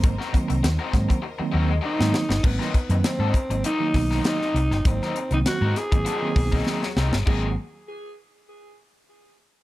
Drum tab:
CC |----------------|x---------------|----------------|x---------------|
HH |x-xxx-xx--------|--xxx-xxx-o-x-x-|x-xxx-xxx-o-----|----------------|
SD |-o--o-o------ooo|-o--o-----oooo-o|-o--o-o-----oooo|----------------|
BD |o-o---oo--------|o-o---o---o-----|o------o--oo----|o---------------|